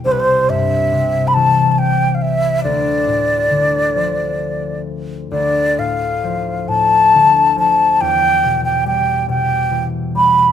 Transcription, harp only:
X:1
M:6/8
L:1/8
Q:3/8=46
K:Ddor
V:1 name="Harp" clef=bass
C,, G,, C, E,3 | D,, A,, D, F,3 | D,, A,, F, A,, D, F, | E,, B,, G, B,, E, G, |]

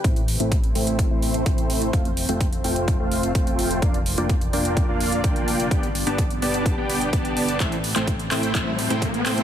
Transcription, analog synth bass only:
X:1
M:4/4
L:1/16
Q:1/4=127
K:Am
V:1 name="Analog synth bass" clef=bass
A,,,3 A,,,3 A,,,3 A,,,3 A,,,4 | F,,,3 F,,,3 F,,,3 F,,,3 F,,,4 | F,,,3 F,,,3 F,,,3 F,,,3 F,,,4 | G,,,3 G,,,3 G,,,3 G,,,3 G,,,4 |
A,,,3 A,,,3 A,,,2 A,,,3 A,,3 A,,2 |]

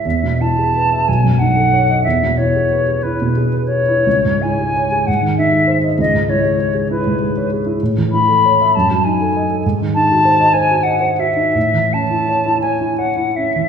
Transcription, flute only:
X:1
M:6/8
L:1/8
Q:3/8=62
K:E
V:1 name="Flute"
e a2 g f2 | e c2 B2 c- | c g2 f e z | d c2 B2 z |
[K:Alyd] z b2 a g2 | z a2 g f e- | e a2 g f e |]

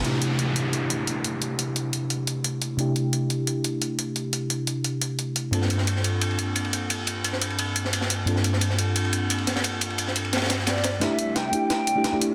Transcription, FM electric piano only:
X:1
M:4/4
L:1/16
Q:1/4=175
K:Gdor
V:1 name="FM electric piano"
[C,A,DEG]16- | [C,A,DEG]16 | [C,A,DEG]16- | [C,A,DEG]16 |
[G,,B,CDFA]16- | [G,,B,CDFA]16 | [G,,B,CDFA]16- | [G,,B,CDFA]16 |
[A,DEG]6 [A,DEG]4- [A,DEG] [A,DEG]2 [A,DEG]3 |]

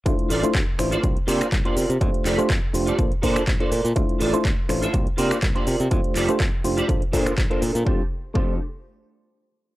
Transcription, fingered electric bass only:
X:1
M:4/4
L:1/16
Q:"Swing 16ths" 1/4=123
K:F
V:1 name="Fingered electric bass" clef=bass
D,, z A,,, z D,, z A,,, z C,, z C, z C,, z C, C, | F,, z F,,, z F,, z F,,, z B,,, z B,, z B,,, z B,, B,, | D,, z A,,, z D,, z A,,, z C,, z C, z C,, z C, C, | F,, z F,,, z F,, z F,,, z B,,, z B,, z B,,, z B,, B,, |
F,, z3 F,,2 z8 z2 |]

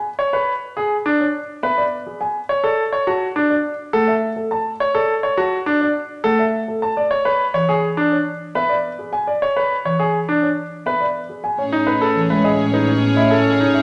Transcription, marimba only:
X:1
M:4/4
L:1/16
Q:1/4=104
K:Emix
V:1 name="Marimba"
z8 z3 B, z4 | z8 z3 A, z4 | z8 z3 A, z4 | z4 E, z6 B, z4 |
z4 E, z6 B, z4 | [K:Alyd] z4 E, G, z4 B, A, z4 |]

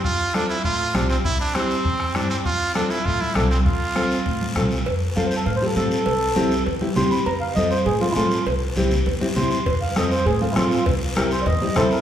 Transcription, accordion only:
X:1
M:4/4
L:1/8
Q:1/4=200
K:F
V:1 name="Accordion"
z8 | z8 | z8 | z8 |
z2 (3f c A (3f c A A2- | A4 z2 c' =b | b f _e c _A F [=EF]2 | z6 c' c' |
c' f _e c _A F [=EF]2 | z2 B c [d_e]2 c B |]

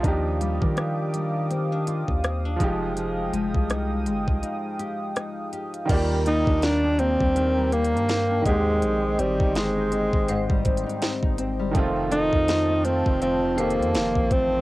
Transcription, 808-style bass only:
X:1
M:4/4
L:1/16
Q:"Swing 16ths" 1/4=82
K:Eb
V:1 name="808-style bass" clef=bass
E,,3 E,8 E,,3 F,,,2- | F,,,2 F,,, C,,3 G,,, C,, z8 | E,,3 E,,4 E,,4 G,,3 E,,2 | B,,,2 A,,, G,,,4 A,,,2 A,,,2 z2 A,,,2 G,,, |
F,,,3 F,,4 F,,,4 F,, F,,, =A,,,3 |]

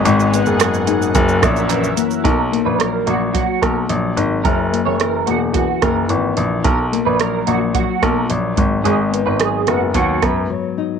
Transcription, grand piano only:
X:1
M:4/4
L:1/16
Q:1/4=109
K:B
V:1 name="Grand piano" clef=bass
G,,,3 F,,,4- F,,, F,,,2 A,,,4 z2 | B,,,3 A,,,3 A,,,3 z B,,,2 A,,,2 G,,,2 | F,,,3 F,,,3 E,,,3 z F,,,2 G,,,2 A,,,2 | B,,,3 A,,,3 A,,,3 z B,,,2 A,,,2 G,,,2 |
G,,,3 G,,,3 F,,,2 D,,2 F,,2 z4 |]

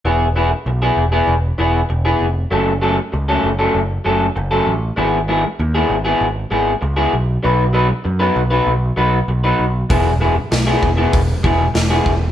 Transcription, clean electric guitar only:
X:1
M:4/4
L:1/16
Q:1/4=98
K:E
V:1 name="Clean electric guitar"
[E,B,EG] z [E,B,EG] z2 [E,B,EG] z [E,B,EG] z2 [E,B,EG] z2 [E,B,EG] z2 | [F,A,CA] z [F,A,CA] z2 [F,A,CA] z [F,A,CA] z2 [F,A,CA] z2 [F,A,CA] z2 | [G,B,EG] z [G,B,EG] z2 [G,B,EG] z [G,B,EG] z2 [G,B,EG] z2 [G,B,EG] z2 | [F,B,DB] z [F,B,DB] z2 [F,B,DB] z [F,B,DB] z2 [F,B,DB] z2 [F,B,DB] z2 |
[G,B,EG] z [G,B,EG] z2 [G,B,EG] z [G,B,EG] z2 [G,B,EG] z2 [G,B,EG] z2 |]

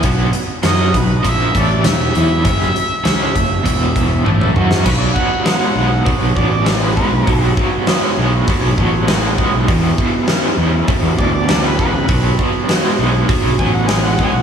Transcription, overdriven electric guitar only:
X:1
M:4/4
L:1/8
Q:1/4=100
K:E
V:1 name="Overdriven electric guitar" clef=bass
[B,,F,B,] z [F,CF] [B,,F,] [^A,,^E,^A,] [=A,,=E,=A,] [E,,B,,] [E,B,E] | [F,,C,F,] z [C,G,C] [F,,C,] [E,,B,,E,]2 [A,,E,A,] [F,CF] | [B,,F,] [B,,F,] [B,,G,] [B,,G,] [B,,F,] [B,,F,] [B,,G,] [B,,G,] | [B,,F,] [B,,F,] [B,,G,] [B,,G,] [B,,F,] [B,,F,] [B,,G,] [B,,G,] |
[E,,B,,] [E,,B,,] [E,,C,] [E,,C,] [E,,B,,] [E,,B,,] [E,,C,] [E,,C,] | [B,,F,] [B,,F,] [B,,G,] [B,,G,] [B,,F,] [B,,F,] [B,,G,] [B,,G,] |]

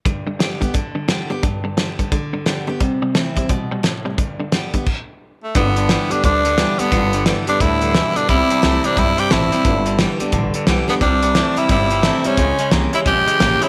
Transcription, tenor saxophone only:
X:1
M:4/4
L:1/8
Q:"Swing" 1/4=176
K:G
V:1 name="Tenor saxophone"
z8 | z8 | z8 | z6 z A, |
B,3 D D3 B,- | B,2 z D E3 D | E3 D E G E2- | E2 z4 z B, |
D3 E E3 ^C- | ^C2 z E G3 E |]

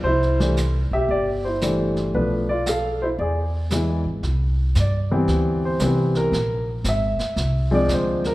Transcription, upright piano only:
X:1
M:4/4
L:1/8
Q:"Swing" 1/4=115
K:C
V:1 name="Upright piano"
[Ec]2 z [Ge] [Gd] [Ec]2 z | B [Fd] [Af] [Ec] [^Gd]3 z | z2 d3 c B _B- | _B z e3 d c B |]
V:2 name="Upright piano"
z [E,G,A,D] z4 [E,G,A,D]2 | [F,A,B,D] z4 z [E,^G,B,E] z | z3 [E,G,B,C]3 [E,G,B,C]2 | z4 z [F,_A,CD]3 |]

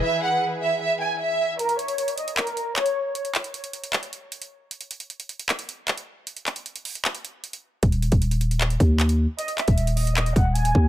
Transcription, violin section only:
X:1
M:4/4
L:1/8
Q:1/4=154
K:Fblyd
V:1 name="Violin section"
=e g z e e ^g e2 | B d2 e B2 d2 | z8 | z8 |
z8 | z8 | e f z e e g a z |]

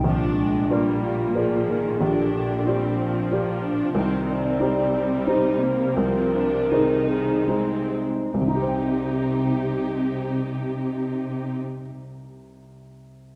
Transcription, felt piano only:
X:1
M:3/4
L:1/8
Q:1/4=84
K:Cm
V:1 name="Felt piano"
B,,,2 [FBd]2 [FBd]2 | B,,,2 [FGd]2 [FGd]2 | C,,2 [EGc]2 [EGc]2 | C,,2 [EAc]2 [EAc]2 |
[C,,C,EGcg]6- | [C,,C,EGcg]6 |]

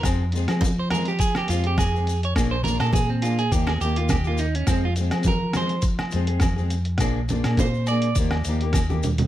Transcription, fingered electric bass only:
X:1
M:4/4
L:1/16
Q:"Swing 16ths" 1/4=104
K:Fm
V:1 name="Fingered electric bass" clef=bass
F,,3 F,6- F, F,,6 | B,,,3 B,,4- B,, E,,2 E,,6 | F,,3 F,6- F, F,,6 | B,,,3 B,,4- B,, E,,2 E,,6 |]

